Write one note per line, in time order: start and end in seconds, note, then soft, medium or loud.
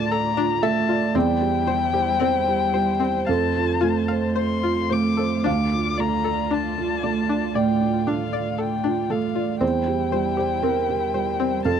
0.00 1.17 A2 medium
0.00 0.63 A3 medium
0.00 1.15 A3 medium
0.00 0.37 F4 medium
0.00 1.15 F4 medium
0.00 0.89 D5 loud
0.00 1.15 D5 medium
0.00 0.12 A5 medium
0.11 0.27 A4 medium
0.11 0.64 A#5 medium
0.37 0.52 D4 medium
0.37 0.78 F4 medium
0.62 1.04 A3 medium
0.62 0.78 A4 medium
0.62 1.11 E5 loud
0.62 1.16 A5 medium
0.89 1.04 F4 medium
0.89 1.14 D5 medium
1.14 3.24 E2 medium
1.14 3.28 G3 medium
1.14 1.31 C4 medium
1.14 3.28 E4 medium
1.14 5.45 C5 medium
1.14 2.17 D5 medium
1.14 3.27 G5 medium
1.41 1.83 G4 medium
1.67 2.10 G3 medium
1.67 1.83 C5 medium
1.93 2.10 G4 medium
1.93 2.20 C5 medium
2.20 2.36 C4 medium
2.20 2.99 C5 medium
2.48 2.90 G4 medium
2.74 3.17 G3 soft
2.74 2.90 C5 medium
3.00 3.16 C4 medium
3.00 3.28 C5 medium
3.27 5.42 F2 medium
3.27 9.62 A3 medium
3.27 9.62 F4 medium
3.27 4.87 A4 medium
3.27 3.43 F5 medium
3.27 4.23 A5 medium
3.56 3.99 F4 medium
3.81 4.26 A3 soft
3.81 3.97 F4 medium
4.08 4.97 C5 soft
4.08 4.25 F5 medium
4.36 4.52 C5 medium
4.36 4.94 C6 medium
4.63 4.80 F4 medium
4.63 5.07 F4 soft
4.90 5.34 A3 soft
4.90 5.07 C5 medium
4.90 5.45 D6 medium
5.17 5.34 A4 medium
5.17 5.46 C5 soft
5.44 7.53 D2 medium
5.44 5.60 D4 medium
5.44 9.62 D5 soft
5.44 7.53 F5 medium
5.44 6.02 D6 medium
5.73 6.15 F4 soft
5.98 6.42 A3 soft
5.98 6.14 D5 medium
5.98 6.54 A#5 medium
6.24 6.41 A4 medium
6.24 7.09 D5 soft
6.51 6.67 D4 medium
6.51 7.57 A5 medium
6.78 7.20 F4 soft
7.03 7.46 A3 soft
7.03 7.19 D5 medium
7.29 7.45 D4 medium
7.29 7.54 D5 soft
7.55 7.97 A2 soft
7.55 7.71 D5 medium
7.55 8.31 D5 medium
7.55 8.09 G5 medium
7.81 8.23 F4 soft
8.07 8.49 A3 soft
8.07 8.23 D4 medium
8.07 8.61 F5 medium
8.33 9.15 D5 soft
8.33 8.49 D5 medium
8.58 8.74 A4 medium
8.58 9.12 G5 medium
8.84 9.00 D4 medium
8.84 9.26 F4 soft
9.10 9.51 A3 soft
9.10 9.26 A4 medium
9.10 9.61 F5 medium
9.35 9.51 F4 medium
9.35 9.62 D5 soft
9.61 11.61 E2 medium
9.61 11.66 G3 medium
9.61 9.76 C4 medium
9.61 11.66 E4 medium
9.61 10.36 C5 medium
9.61 11.80 C5 medium
9.61 11.61 G5 medium
9.87 10.28 G4 medium
10.12 10.54 G3 soft
10.12 10.28 C5 medium
10.37 10.53 G4 medium
10.37 11.19 C5 soft
10.63 10.79 C4 medium
10.63 11.61 A#4 medium
10.89 11.30 G4 medium
11.14 11.55 G3 soft
11.14 11.30 C5 medium
11.40 11.55 C4 medium
11.40 11.65 C5 medium
11.65 11.80 F2 medium
11.65 11.80 A3 medium
11.65 11.80 F4 medium
11.65 11.80 A4 medium
11.65 11.80 F5 medium
11.65 11.80 A5 medium